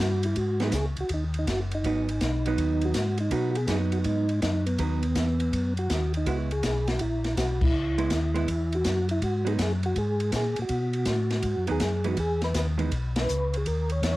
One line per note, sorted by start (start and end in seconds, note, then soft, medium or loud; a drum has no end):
0.00 0.35 G2 loud
0.00 0.26 F#4 loud
0.23 0.37 E4 medium
0.23 ride medium
0.36 0.72 G#2 medium
0.36 0.62 F#4 medium
0.36 kick soft
0.36 ride medium
0.60 0.72 F#3 medium
0.60 0.72 B3 medium
0.60 0.73 D#4 medium
0.60 0.68 G#4 medium
0.60 snare medium
0.60 ride soft
0.72 0.96 C#2 medium
0.72 0.86 G#4 medium
0.72 kick soft
0.72 snare medium
0.72 hi-hat pedal medium
0.72 ride medium
0.96 1.04 C#2 soft
0.96 ride soft
1.01 1.11 F#4 medium
1.09 1.46 D#2 medium
1.09 kick soft
1.09 ride medium
1.14 1.24 D#4 medium
1.34 ride soft
1.39 1.50 D#4 medium
1.47 1.83 F#1 medium
1.47 1.60 F#4 medium
1.47 kick soft
1.47 snare medium
1.47 hi-hat pedal medium
1.47 ride medium
1.71 2.87 D#4 medium
1.71 ride soft
1.84 2.20 G#1 medium
1.84 2.07 F#3 medium
1.84 2.07 B3 medium
1.84 2.07 D#4 medium
1.84 kick soft
1.84 ride medium
2.09 ride soft
2.21 2.57 B1 medium
2.21 kick soft
2.21 snare medium
2.21 hi-hat pedal medium
2.21 ride medium
2.46 2.93 F#3 medium
2.46 2.94 B3 medium
2.46 2.94 D#4 medium
2.46 ride soft
2.58 2.94 D#2 medium
2.58 kick soft
2.58 ride medium
2.81 3.18 F#4 medium
2.81 ride soft
2.94 3.31 G#2 medium
2.94 kick soft
2.94 snare medium
2.94 hi-hat pedal medium
2.94 ride medium
3.18 3.32 D#4 medium
3.18 ride soft
3.31 3.67 B2 medium
3.31 3.54 F#3 medium
3.31 3.54 B3 medium
3.31 3.54 D#4 medium
3.31 3.50 F#4 medium
3.31 kick soft
3.31 ride medium
3.51 3.57 F#4 medium
3.55 3.66 G#4 medium
3.55 ride soft
3.67 4.04 F#2 loud
3.67 4.25 F#3 medium
3.67 4.26 B3 medium
3.67 4.26 D#4 medium
3.67 3.78 G#4 medium
3.67 kick soft
3.67 snare medium
3.67 hi-hat pedal soft
3.67 ride medium
3.92 3.98 F#4 medium
3.92 ride soft
4.04 4.41 G#2 medium
4.04 4.40 D#4 medium
4.04 kick soft
4.04 ride medium
4.29 ride soft
4.42 4.78 F#2 medium
4.42 4.65 D#4 medium
4.42 kick soft
4.42 snare medium
4.42 hi-hat pedal medium
4.42 ride medium
4.66 5.73 B3 medium
4.66 ride soft
4.78 5.15 D#2 medium
4.78 5.01 F#3 medium
4.78 5.02 B3 medium
4.78 5.02 D#4 medium
4.78 kick soft
4.78 ride medium
5.03 ride soft
5.15 5.52 E2 medium
5.15 kick soft
5.15 snare medium
5.15 hi-hat pedal medium
5.15 ride medium
5.40 ride soft
5.53 5.89 F#2 medium
5.53 kick soft
5.53 ride medium
5.77 6.13 F#4 medium
5.77 ride soft
5.90 6.26 D#2 medium
5.90 kick soft
5.90 snare medium
5.90 hi-hat pedal medium
5.90 ride medium
6.14 6.28 D#4 medium
6.14 ride soft
6.26 6.63 C#2 medium
6.26 6.49 G#3 medium
6.26 6.50 B3 medium
6.26 6.50 E4 medium
6.26 6.38 F#4 medium
6.26 kick soft
6.26 ride medium
6.51 6.64 G#4 medium
6.51 ride soft
6.63 7.00 B1 medium
6.63 6.88 G#4 medium
6.63 kick soft
6.63 snare medium
6.63 hi-hat pedal medium
6.63 ride medium
6.87 7.01 F#4 medium
6.87 snare medium
6.87 ride soft
6.99 7.36 A#1 medium
6.99 7.35 E4 medium
6.99 kick soft
6.99 ride medium
7.24 snare soft
7.24 ride soft
7.37 7.73 B1 medium
7.37 7.63 F#4 medium
7.37 kick soft
7.37 snare medium
7.37 hi-hat pedal medium
7.37 ride medium
7.61 8.77 E4 medium
7.61 kick medium
7.61 crash medium
7.74 8.10 C#2 medium
7.98 8.10 G#3 medium
7.98 8.10 B3 medium
7.98 8.10 E4 medium
7.98 ride soft
8.10 8.47 D#2 medium
8.10 kick soft
8.10 snare medium
8.10 hi-hat pedal medium
8.10 ride medium
8.34 8.46 G#3 medium
8.34 8.47 B3 medium
8.34 8.47 E4 medium
8.34 ride soft
8.48 8.84 E2 medium
8.48 kick soft
8.48 ride medium
8.72 9.08 F#4 loud
8.72 ride soft
8.84 9.21 F#2 medium
8.84 kick soft
8.84 snare medium
8.84 hi-hat pedal soft
8.84 ride medium
9.09 9.22 E4 medium
9.09 ride soft
9.22 9.58 G#2 medium
9.22 9.48 F#4 loud
9.22 kick soft
9.22 ride medium
9.45 9.57 F#3 medium
9.45 9.58 B3 medium
9.45 9.58 D#4 medium
9.45 9.53 G#4 medium
9.45 ride soft
9.59 9.95 F#2 medium
9.59 9.73 G#4 medium
9.59 kick soft
9.59 snare medium
9.59 hi-hat pedal medium
9.59 ride medium
9.83 9.98 F#4 medium
9.83 ride soft
9.96 10.32 G#2 medium
9.96 10.32 G#4 medium
9.96 kick soft
9.96 ride medium
10.20 ride soft
10.32 10.56 A#2 medium
10.32 10.60 G#4 loud
10.32 kick soft
10.32 snare medium
10.32 hi-hat pedal medium
10.32 ride medium
10.56 10.65 A#2 soft
10.56 ride soft
10.62 11.67 F#4 medium
10.69 11.06 B2 medium
10.69 kick soft
10.69 ride medium
10.93 ride soft
11.05 11.42 A2 medium
11.05 kick soft
11.05 snare medium
11.05 hi-hat pedal medium
11.05 ride medium
11.30 snare soft
11.30 ride soft
11.42 11.56 G#2 medium
11.42 kick soft
11.42 ride medium
11.57 11.69 F#2 medium
11.67 11.81 D#2 medium
11.67 11.79 F#3 medium
11.67 11.80 B3 medium
11.67 11.80 D#4 medium
11.67 ride soft
11.71 12.08 G#4 loud
11.80 12.16 F#2 medium
11.80 kick soft
11.80 snare medium
11.80 hi-hat pedal medium
11.80 ride medium
12.04 12.16 E3 medium
12.04 12.16 G#3 medium
12.04 12.17 B3 medium
12.04 12.17 D#4 medium
12.04 12.18 F#4 medium
12.04 ride soft
12.17 12.54 E2 medium
12.17 12.41 G#4 loud
12.17 kick soft
12.17 ride medium
12.42 12.55 B4 medium
12.42 snare soft
12.42 ride soft
12.54 12.90 D#2 medium
12.54 12.67 B4 medium
12.54 kick soft
12.54 snare medium
12.54 hi-hat pedal medium
12.54 ride medium
12.78 12.90 E3 medium
12.78 12.90 G#3 medium
12.78 12.90 B3 medium
12.78 12.90 D#4 medium
12.78 ride soft
12.92 13.27 B1 medium
12.92 kick soft
12.92 ride medium
13.16 snare medium
13.16 ride medium
13.21 13.57 B4 loud
13.29 13.65 C#2 medium
13.29 hi-hat pedal medium
13.54 13.67 G#4 medium
13.54 ride soft
13.65 14.01 D#2 medium
13.65 13.91 A#4 loud
13.65 kick soft
13.65 ride medium
13.90 14.03 C#5 medium
13.90 ride soft
14.02 14.17 E2 medium
14.02 14.17 C#5 medium
14.02 kick soft
14.02 snare medium
14.02 hi-hat pedal soft
14.02 ride medium